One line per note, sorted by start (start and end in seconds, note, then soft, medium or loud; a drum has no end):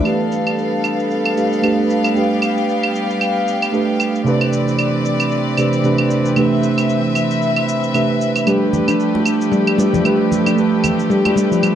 0.03 4.22 G3 medium
0.03 1.33 A3 medium
0.03 4.22 B3 medium
0.03 1.34 D4 medium
0.03 1.34 G4 medium
0.03 2.14 A4 medium
0.03 4.22 F5 medium
0.03 claves medium
0.03 shaker soft
0.08 1.35 B4 medium
0.32 shaker medium
0.47 claves medium
0.47 shaker soft
0.58 shaker soft
0.84 claves medium
0.84 shaker medium
1.00 shaker soft
1.11 shaker soft
1.25 claves medium
1.36 1.60 A3 medium
1.36 1.60 D4 medium
1.36 1.61 G4 medium
1.36 1.61 B4 medium
1.36 shaker medium
1.53 shaker soft
1.62 2.12 A3 medium
1.62 2.13 D4 medium
1.62 2.13 G4 medium
1.62 2.13 B4 medium
1.62 claves medium
1.62 shaker soft
1.90 shaker medium
2.04 claves medium
2.04 shaker soft
2.14 3.70 A3 medium
2.14 3.71 D4 medium
2.14 4.24 G4 medium
2.14 3.71 G4 medium
2.14 shaker soft
2.18 3.72 B4 medium
2.42 claves medium
2.42 shaker medium
2.58 shaker soft
2.69 shaker soft
2.83 claves medium
2.95 shaker medium
3.10 shaker soft
3.21 claves medium
3.21 shaker soft
3.48 shaker medium
3.62 claves medium
3.62 shaker soft
3.72 4.23 A3 medium
3.72 4.23 D4 medium
3.72 4.23 G4 medium
3.72 4.24 B4 medium
3.72 shaker soft
4.00 claves medium
4.00 shaker medium
4.15 shaker soft
4.24 5.54 C3 medium
4.24 8.43 E3 medium
4.24 5.55 A3 medium
4.24 8.43 C4 medium
4.24 5.55 D4 medium
4.24 5.56 G4 medium
4.24 11.75 B4 medium
4.24 5.56 B4 medium
4.24 6.35 D5 medium
4.24 shaker soft
4.41 claves medium
4.53 shaker medium
4.68 shaker soft
4.79 claves medium
4.79 shaker soft
5.05 shaker medium
5.20 claves medium
5.20 shaker soft
5.32 shaker soft
5.57 5.81 C3 medium
5.57 5.81 A3 medium
5.57 5.82 D4 medium
5.57 5.82 G4 medium
5.57 5.82 B4 medium
5.57 claves medium
5.57 shaker medium
5.73 shaker soft
5.83 6.34 C3 medium
5.83 6.34 A3 medium
5.83 6.34 D4 medium
5.83 6.34 G4 medium
5.83 6.35 B4 loud
5.83 shaker soft
5.98 claves medium
6.10 shaker medium
6.25 shaker soft
6.35 7.91 C3 medium
6.35 7.92 A3 medium
6.35 7.92 D4 medium
6.35 7.93 G4 medium
6.35 7.93 B4 medium
6.35 8.45 E5 medium
6.35 claves medium
6.35 shaker soft
6.63 shaker medium
6.78 claves medium
6.78 shaker soft
6.89 shaker soft
7.15 claves medium
7.15 shaker medium
7.31 shaker soft
7.42 shaker soft
7.56 claves medium
7.68 shaker medium
7.84 shaker soft
7.94 8.44 C3 medium
7.94 8.44 A3 medium
7.94 8.44 D4 medium
7.94 8.45 G4 medium
7.94 8.45 B4 medium
7.94 claves medium
7.94 shaker soft
8.21 shaker medium
8.36 claves medium
8.36 shaker soft
8.45 11.75 F3 medium
8.45 8.87 G3 medium
8.45 9.75 A3 medium
8.45 11.75 A3 medium
8.45 9.76 D4 medium
8.45 11.75 G4 medium
8.45 9.76 G4 medium
8.45 claves medium
8.45 shaker soft
8.49 9.77 B4 medium
8.73 low conga medium
8.73 shaker medium
8.88 8.95 D4 medium
8.88 claves medium
8.88 shaker soft
9.00 shaker soft
9.15 high bongo medium
9.15 high conga medium
9.26 claves medium
9.26 shaker medium
9.41 shaker soft
9.52 9.77 G3 medium
9.52 shaker soft
9.67 claves medium
9.78 9.93 G3 medium
9.78 10.02 A3 medium
9.78 10.02 D4 medium
9.78 10.02 G4 medium
9.78 10.03 B4 medium
9.78 high bongo medium
9.78 shaker medium
9.93 10.04 F3 medium
9.93 high conga medium
9.93 low conga medium
9.93 shaker soft
10.04 10.45 G3 medium
10.04 10.54 A3 medium
10.04 10.55 D4 medium
10.04 10.55 G4 medium
10.04 10.56 B4 medium
10.04 claves medium
10.04 shaker soft
10.32 low conga medium
10.32 shaker medium
10.46 10.53 D4 medium
10.46 claves medium
10.46 shaker soft
10.56 11.75 A3 medium
10.56 11.75 D4 medium
10.56 11.75 G4 medium
10.56 11.75 B4 medium
10.56 shaker soft
10.84 low conga medium
10.84 claves medium
10.84 shaker medium
10.99 shaker soft
11.10 11.35 G3 medium
11.10 shaker soft
11.25 high bongo medium
11.25 high conga medium
11.25 claves medium
11.36 11.51 G3 loud
11.36 shaker medium
11.52 11.62 F3 medium
11.52 shaker soft
11.63 11.75 G3 medium
11.63 claves medium
11.63 shaker soft